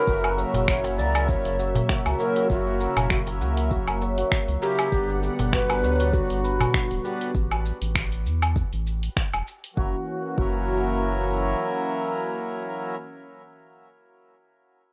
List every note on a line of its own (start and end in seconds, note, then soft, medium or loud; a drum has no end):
0.00 4.88 C#3 medium
0.00 0.30 A4 medium
0.00 0.34 A#4 loud
0.00 0.30 B4 loud
0.00 0.37 C#5 medium
0.00 4.88 E5 medium
0.06 0.45 F#1 loud
0.06 1.56 C#3 medium
0.06 4.88 F#3 medium
0.06 1.55 A#3 medium
0.06 4.88 A#3 medium
0.06 1.56 E4 medium
0.06 0.54 F#4 medium
0.06 1.57 A#4 medium
0.06 kick loud
0.06 shaker soft
0.24 0.98 A#4 medium
0.24 darbuka ka soft
0.24 low woodblock medium
0.24 shaker soft
0.38 2.19 C#5 medium
0.38 shaker medium
0.54 1.00 F#1 medium
0.54 1.58 F#4 medium
0.54 open hi-hat medium
0.54 darbuka tek medium
0.54 darbuka dum medium
0.54 shaker soft
0.68 1.00 C#5 loud
0.68 finger snap loud
0.68 kick loud
0.68 shaker soft
0.84 open hi-hat soft
0.84 darbuka tek medium
0.84 shaker soft
0.98 1.36 C#2 loud
0.98 2.05 A#4 medium
0.98 1.31 D5 loud
0.98 shaker medium
1.15 open hi-hat medium
1.15 darbuka ka soft
1.15 low woodblock medium
1.15 shaker soft
1.29 1.90 C#5 loud
1.29 kick loud
1.29 shaker soft
1.45 1.82 F#1 medium
1.45 open hi-hat soft
1.45 shaker soft
1.59 1.89 F#4 medium
1.59 shaker medium
1.75 open hi-hat medium
1.75 darbuka tek medium
1.75 darbuka dum loud
1.75 shaker soft
1.89 2.36 F#4 medium
1.89 finger snap loud
1.89 kick loud
1.89 shaker soft
2.06 2.15 C#2 medium
2.06 2.80 A#4 medium
2.06 open hi-hat soft
2.06 darbuka tek soft
2.06 low woodblock medium
2.06 shaker soft
2.19 2.46 F#3 loud
2.19 2.46 A#3 medium
2.19 2.47 C#4 medium
2.19 2.47 E4 medium
2.19 2.48 A#4 loud
2.19 2.47 A#4 loud
2.19 4.01 C#5 medium
2.19 darbuka ka soft
2.19 shaker medium
2.36 3.40 F#4 medium
2.36 open hi-hat soft
2.36 shaker soft
2.48 2.87 F#1 loud
2.48 3.97 F#3 medium
2.48 3.98 A#3 medium
2.48 3.98 C#4 medium
2.48 3.99 E4 medium
2.48 3.37 F#4 loud
2.48 3.99 A#4 medium
2.48 kick loud
2.48 shaker soft
2.67 darbuka ka medium
2.67 shaker soft
2.80 3.87 A#4 medium
2.80 shaker medium
2.97 3.42 F#1 medium
2.97 open hi-hat medium
2.97 darbuka tek medium
2.97 darbuka dum medium
2.97 low woodblock medium
2.97 shaker soft
3.10 finger snap loud
3.10 kick loud
3.10 shaker soft
3.27 open hi-hat soft
3.27 darbuka tek medium
3.27 shaker soft
3.41 3.78 C#2 loud
3.41 3.71 F#4 medium
3.41 shaker medium
3.57 open hi-hat medium
3.57 darbuka ka soft
3.57 darbuka tek soft
3.57 shaker soft
3.71 4.17 F#4 medium
3.71 kick loud
3.71 shaker soft
3.88 4.24 F#1 medium
3.88 4.61 A#4 medium
3.88 open hi-hat soft
3.88 low woodblock medium
3.88 shaker soft
4.01 5.83 C#5 medium
4.01 darbuka tek medium
4.01 shaker medium
4.18 5.28 F#4 medium
4.18 open hi-hat medium
4.18 shaker soft
4.32 finger snap loud
4.32 kick loud
4.32 shaker soft
4.48 4.57 C#2 medium
4.48 open hi-hat soft
4.48 shaker soft
4.61 4.88 F#3 medium
4.61 4.89 A#3 medium
4.61 4.89 C#4 medium
4.61 4.89 E4 medium
4.61 5.19 G4 loud
4.61 5.69 A#4 medium
4.61 4.89 A#4 loud
4.61 darbuka tek soft
4.61 shaker medium
4.79 open hi-hat medium
4.79 low woodblock medium
4.79 shaker soft
4.90 5.30 G1 loud
4.90 7.32 D3 medium
4.90 6.39 G3 medium
4.90 7.32 G3 medium
4.90 6.40 B3 medium
4.90 7.32 B3 medium
4.90 6.40 D4 medium
4.90 7.32 F#5 medium
4.90 6.41 F#5 medium
4.90 kick loud
4.90 shaker soft
5.09 darbuka ka medium
5.09 shaker soft
5.22 5.59 G4 medium
5.22 shaker medium
5.39 5.85 G1 medium
5.39 open hi-hat medium
5.39 darbuka tek medium
5.39 darbuka dum medium
5.39 shaker soft
5.53 5.99 F#4 medium
5.53 6.15 B4 loud
5.53 finger snap loud
5.53 kick loud
5.53 shaker soft
5.69 6.50 A#4 medium
5.69 open hi-hat soft
5.69 darbuka tek medium
5.69 low woodblock medium
5.69 shaker soft
5.83 6.21 D2 loud
5.83 8.38 C#5 medium
5.83 shaker medium
6.00 7.10 F#4 medium
6.00 open hi-hat medium
6.00 darbuka ka soft
6.00 shaker soft
6.13 7.35 F#4 loud
6.13 kick loud
6.13 shaker soft
6.30 6.66 G1 medium
6.30 open hi-hat soft
6.30 shaker soft
6.44 9.17 B4 medium
6.44 shaker medium
6.60 open hi-hat medium
6.60 darbuka tek medium
6.60 darbuka dum medium
6.60 low woodblock medium
6.60 shaker soft
6.74 finger snap loud
6.74 kick loud
6.74 shaker soft
6.91 7.00 D1 medium
6.91 open hi-hat soft
6.91 darbuka tek soft
6.91 shaker soft
7.03 7.31 G3 medium
7.03 7.31 B3 medium
7.03 7.31 D4 medium
7.03 7.31 F#4 medium
7.03 9.83 G4 medium
7.03 7.32 B4 loud
7.03 darbuka ka medium
7.03 shaker medium
7.21 open hi-hat medium
7.21 shaker soft
7.35 7.72 A1 loud
7.35 kick loud
7.35 shaker soft
7.51 low woodblock medium
7.51 shaker soft
7.66 shaker medium
7.82 8.27 A1 medium
7.82 open hi-hat medium
7.82 shaker soft
7.95 finger snap loud
7.95 kick loud
7.95 shaker soft
8.12 open hi-hat soft
8.12 shaker soft
8.26 8.63 E2 loud
8.26 shaker medium
8.42 open hi-hat medium
8.42 low woodblock medium
8.42 shaker soft
8.56 kick loud
8.56 shaker soft
8.73 9.09 A1 medium
8.73 open hi-hat soft
8.73 shaker soft
8.87 shaker medium
9.03 open hi-hat medium
9.03 shaker soft
9.17 finger snap loud
9.17 kick loud
9.17 shaker soft
9.34 9.42 E1 medium
9.34 open hi-hat soft
9.34 low woodblock medium
9.34 shaker soft
9.48 shaker medium
9.64 open hi-hat medium
9.64 shaker soft
9.74 9.95 F#1 loud
9.74 12.96 E3 medium
9.74 9.93 F#3 medium
9.74 9.94 A#3 medium
9.74 12.96 A#3 medium
9.74 9.95 C#4 medium
9.74 12.96 C#4 medium
9.74 10.38 F#4 loud
9.74 12.96 F#4 medium
9.74 kick loud
9.79 9.96 E4 medium
9.79 9.97 A#4 medium
10.35 11.55 F#1 loud
10.35 12.94 F#3 loud
10.35 12.95 A#3 loud
10.35 12.95 C#4 medium
10.35 13.63 F#4 medium
10.35 kick loud
10.39 12.96 E4 medium
10.39 12.97 A#4 loud